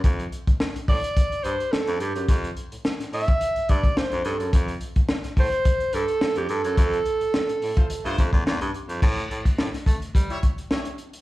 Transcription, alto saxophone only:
0.89 1.45 D5 loud
1.43 1.73 C5 medium
1.72 2.02 A4 loud
2.01 2.29 G4 medium
3.14 3.71 E5 loud
3.69 3.99 D5 medium
3.98 4.27 C5 medium
4.26 4.54 A4 medium
5.39 5.96 C5 loud
5.95 6.39 A4 loud
6.38 6.52 G4 medium
6.51 8.46 A4 loud

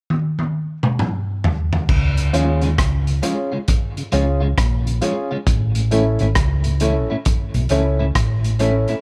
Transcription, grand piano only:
2.33 2.59 C#4 medium
2.33 2.59 F4 medium
2.33 2.60 G#4 medium
2.33 2.60 C#5 loud
3.22 3.49 C#4 medium
3.22 3.49 F4 medium
3.22 3.49 G#4 medium
3.22 3.49 C#5 medium
4.12 4.38 C#4 medium
4.12 4.39 F4 medium
4.12 4.39 G#4 medium
4.12 4.39 C#5 medium
5.01 5.28 C#4 medium
5.01 5.28 F4 medium
5.01 5.28 G#4 medium
5.01 5.28 C#5 loud
5.91 6.17 C#4 medium
5.91 6.17 E4 medium
5.91 6.18 A4 medium
5.91 6.18 C#5 medium
6.80 7.07 C#4 medium
6.80 7.07 E4 medium
6.80 7.07 A4 medium
6.80 7.07 C#5 loud
7.70 7.96 C#4 medium
7.70 7.97 E4 medium
7.70 7.97 A4 medium
7.70 7.97 C#5 loud
8.59 8.86 C#4 medium
8.59 8.86 E4 medium
8.59 8.86 A4 medium
8.59 8.86 C#5 loud

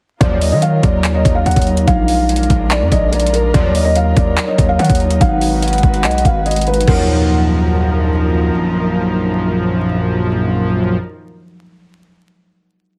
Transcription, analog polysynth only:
0.21 0.38 F#2 medium
0.21 0.38 A#2 loud
0.21 0.39 F3 loud
3.54 3.72 F#2 medium
3.54 3.72 A#2 loud
3.54 3.72 F3 loud
6.88 10.97 A#1 medium
6.88 10.97 F#2 medium
6.88 10.97 F3 loud

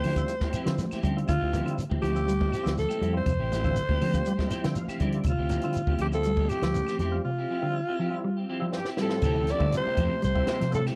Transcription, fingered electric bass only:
0.05 0.23 D3 medium
0.67 0.76 D3 medium
0.92 muted fingered electric bass stroke soft
1.04 1.23 D3 medium
1.29 1.38 D2 medium
1.42 1.61 D2 medium
1.91 2.00 D2 medium
2.03 2.50 D2 medium
2.66 2.84 D2 medium
3.01 3.20 F2 medium
3.26 3.36 F2 medium
3.39 3.77 A1 medium
3.89 3.98 D2 medium
4.02 4.20 D3 medium
4.65 4.74 D3 medium
4.88 muted fingered electric bass stroke soft
5.00 5.19 D3 medium
5.25 5.35 D2 medium
5.39 5.58 D2 medium
5.87 5.97 D2 medium
5.99 6.47 D2 medium
6.62 6.81 D2 medium
6.99 7.18 F2 medium
9.23 9.51 D2 medium
9.61 9.70 D2 medium
9.86 muted fingered electric bass stroke soft
9.98 10.08 F2 medium
10.24 10.42 C2 medium
10.62 10.89 C3 medium

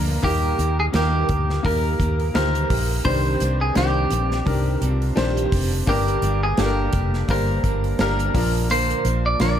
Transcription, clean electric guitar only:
0.24 0.79 G4 medium
0.80 0.85 G#4 medium
0.95 1.65 G4 medium
1.66 2.34 A#4 loud
2.36 3.05 A#4 loud
3.05 3.61 C5 loud
3.61 3.77 G#4 medium
3.77 4.90 G4 medium
4.90 5.49 F4 medium
5.89 6.43 G4 medium
6.43 6.59 G#4 medium
6.59 7.31 G4 medium
7.31 8.00 A#4 loud
8.01 8.67 A#4 medium
8.71 9.25 C5 loud
9.26 9.40 D5 medium
9.41 9.60 D5 medium

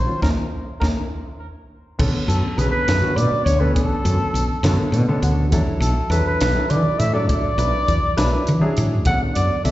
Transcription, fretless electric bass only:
0.23 0.33 D#2 medium
0.82 0.92 D#2 medium
1.99 2.11 B1 medium
2.13 muted fretless electric bass stroke soft
2.28 2.40 F#2 medium
2.58 2.70 B1 medium
2.72 muted fretless electric bass stroke soft
2.88 3.00 F#2 medium
3.02 muted fretless electric bass stroke soft
3.16 3.29 B2 medium
3.31 muted fretless electric bass stroke soft
3.46 3.76 D2 medium
3.76 3.88 B1 medium
3.90 muted fretless electric bass stroke soft
4.05 4.17 F#2 medium
4.34 4.47 B1 medium
4.49 muted fretless electric bass stroke soft
4.63 4.76 F#2 loud
4.78 muted fretless electric bass stroke soft
4.92 5.05 B2 medium
5.08 muted fretless electric bass stroke soft
5.22 5.53 D2 medium
5.53 5.65 E2 loud
5.67 muted fretless electric bass stroke soft
5.80 5.93 B1 medium
6.10 6.23 E2 medium
6.25 muted fretless electric bass stroke soft
6.41 6.54 B1 loud
6.55 muted fretless electric bass stroke soft
6.71 6.83 E3 medium
6.85 muted fretless electric bass stroke soft
7.00 7.29 A2 medium
7.29 7.42 E2 loud
7.44 muted fretless electric bass stroke soft
7.58 7.71 B1 medium
7.88 8.01 E2 medium
8.04 muted fretless electric bass stroke soft
8.18 8.30 B1 medium
8.33 muted fretless electric bass stroke soft
8.48 8.60 E3 medium
8.63 muted fretless electric bass stroke soft
8.78 9.06 A2 medium
9.06 9.18 B1 medium
9.23 muted fretless electric bass stroke soft
9.36 9.48 F#2 medium
9.65 9.71 B1 medium

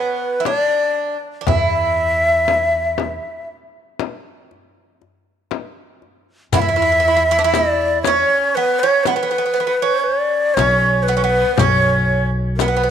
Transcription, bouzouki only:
0.00 0.41 B3 medium
0.40 0.46 E4 medium
0.46 1.17 D4 medium
1.41 1.48 D4 soft
1.48 3.46 E4 medium
6.54 6.60 E4 medium
6.61 6.67 E4 medium
6.69 6.75 E4 medium
6.76 6.81 E4 medium
6.82 6.90 E4 medium
6.92 6.99 E4 soft
7.00 7.07 E4 medium
7.08 7.14 E4 medium
7.17 7.22 E4 medium
7.31 7.37 E4 medium
7.39 7.44 D4 medium
7.44 8.07 E4 medium
8.07 8.57 C#4 medium
8.57 8.82 B3 medium
8.83 9.07 C#4 medium
9.07 9.14 B3 medium
9.16 9.22 B3 medium
9.23 9.30 B3 medium
9.31 9.37 B3 medium
9.38 9.45 B3 medium
9.46 9.52 B3 soft
9.54 9.59 B3 medium
9.60 9.66 B3 soft
9.67 9.74 B3 medium
9.82 10.57 C#4 medium
10.59 11.08 C#4 medium
11.08 11.15 B3 medium
11.17 11.23 C#4 medium
11.24 11.59 B3 medium
11.59 12.29 C#4 medium
12.61 12.67 B3 medium
12.68 12.75 B3 soft
12.77 12.82 B3 medium
12.83 12.88 B3 medium

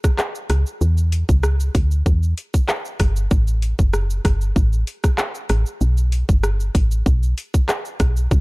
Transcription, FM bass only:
0.50 0.65 C#2 medium
0.81 1.24 E2 loud
1.29 1.70 C#2 medium
1.75 2.03 D2 loud
2.06 2.34 E2 loud
3.00 3.28 G1 medium
3.31 3.74 A1 loud
3.79 4.20 F#1 loud
4.25 4.53 G1 loud
4.56 4.84 A1 loud
5.50 5.65 A1 loud
5.81 6.24 B1 loud
6.29 6.70 G1 medium
6.75 7.03 A1 medium
7.06 7.34 B1 loud
8.00 8.28 B1 medium
8.31 8.41 C#2 loud

